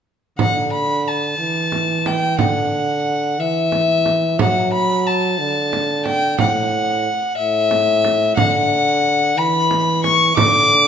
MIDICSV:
0, 0, Header, 1, 4, 480
1, 0, Start_track
1, 0, Key_signature, 2, "major"
1, 0, Tempo, 665927
1, 280, Time_signature, 6, 3, 24, 8
1, 7839, End_track
2, 0, Start_track
2, 0, Title_t, "Violin"
2, 0, Program_c, 0, 40
2, 284, Note_on_c, 0, 78, 71
2, 506, Note_off_c, 0, 78, 0
2, 525, Note_on_c, 0, 83, 80
2, 775, Note_on_c, 0, 81, 73
2, 785, Note_off_c, 0, 83, 0
2, 1487, Note_on_c, 0, 79, 75
2, 1498, Note_off_c, 0, 81, 0
2, 1725, Note_off_c, 0, 79, 0
2, 1734, Note_on_c, 0, 78, 76
2, 2451, Note_on_c, 0, 76, 80
2, 2461, Note_off_c, 0, 78, 0
2, 3166, Note_off_c, 0, 76, 0
2, 3177, Note_on_c, 0, 78, 74
2, 3405, Note_off_c, 0, 78, 0
2, 3411, Note_on_c, 0, 83, 82
2, 3648, Note_on_c, 0, 81, 72
2, 3659, Note_off_c, 0, 83, 0
2, 4364, Note_off_c, 0, 81, 0
2, 4368, Note_on_c, 0, 79, 81
2, 4600, Note_off_c, 0, 79, 0
2, 4610, Note_on_c, 0, 78, 85
2, 5308, Note_off_c, 0, 78, 0
2, 5314, Note_on_c, 0, 76, 90
2, 6020, Note_off_c, 0, 76, 0
2, 6034, Note_on_c, 0, 78, 89
2, 6761, Note_on_c, 0, 83, 95
2, 6771, Note_off_c, 0, 78, 0
2, 7238, Note_off_c, 0, 83, 0
2, 7241, Note_on_c, 0, 85, 97
2, 7473, Note_off_c, 0, 85, 0
2, 7476, Note_on_c, 0, 86, 109
2, 7839, Note_off_c, 0, 86, 0
2, 7839, End_track
3, 0, Start_track
3, 0, Title_t, "Trombone"
3, 0, Program_c, 1, 57
3, 278, Note_on_c, 1, 50, 61
3, 972, Note_off_c, 1, 50, 0
3, 999, Note_on_c, 1, 52, 58
3, 1722, Note_on_c, 1, 50, 60
3, 1733, Note_off_c, 1, 52, 0
3, 2444, Note_on_c, 1, 52, 57
3, 2454, Note_off_c, 1, 50, 0
3, 3163, Note_on_c, 1, 54, 63
3, 3173, Note_off_c, 1, 52, 0
3, 3883, Note_on_c, 1, 50, 63
3, 3893, Note_off_c, 1, 54, 0
3, 4599, Note_off_c, 1, 50, 0
3, 4603, Note_on_c, 1, 45, 60
3, 5108, Note_off_c, 1, 45, 0
3, 5319, Note_on_c, 1, 45, 66
3, 6008, Note_off_c, 1, 45, 0
3, 6036, Note_on_c, 1, 50, 68
3, 6760, Note_on_c, 1, 52, 63
3, 6771, Note_off_c, 1, 50, 0
3, 7469, Note_off_c, 1, 52, 0
3, 7474, Note_on_c, 1, 50, 69
3, 7839, Note_off_c, 1, 50, 0
3, 7839, End_track
4, 0, Start_track
4, 0, Title_t, "Frame drum"
4, 280, Note_on_c, 9, 64, 70
4, 352, Note_off_c, 9, 64, 0
4, 1242, Note_on_c, 9, 64, 46
4, 1314, Note_off_c, 9, 64, 0
4, 1485, Note_on_c, 9, 64, 49
4, 1557, Note_off_c, 9, 64, 0
4, 1719, Note_on_c, 9, 64, 67
4, 1791, Note_off_c, 9, 64, 0
4, 2683, Note_on_c, 9, 64, 49
4, 2755, Note_off_c, 9, 64, 0
4, 2925, Note_on_c, 9, 64, 45
4, 2997, Note_off_c, 9, 64, 0
4, 3166, Note_on_c, 9, 64, 75
4, 3238, Note_off_c, 9, 64, 0
4, 4130, Note_on_c, 9, 64, 47
4, 4202, Note_off_c, 9, 64, 0
4, 4365, Note_on_c, 9, 64, 49
4, 4437, Note_off_c, 9, 64, 0
4, 4602, Note_on_c, 9, 64, 73
4, 4674, Note_off_c, 9, 64, 0
4, 5557, Note_on_c, 9, 64, 45
4, 5629, Note_off_c, 9, 64, 0
4, 5799, Note_on_c, 9, 64, 49
4, 5871, Note_off_c, 9, 64, 0
4, 6035, Note_on_c, 9, 64, 71
4, 6107, Note_off_c, 9, 64, 0
4, 6998, Note_on_c, 9, 64, 49
4, 7070, Note_off_c, 9, 64, 0
4, 7238, Note_on_c, 9, 64, 48
4, 7311, Note_off_c, 9, 64, 0
4, 7477, Note_on_c, 9, 64, 75
4, 7549, Note_off_c, 9, 64, 0
4, 7839, End_track
0, 0, End_of_file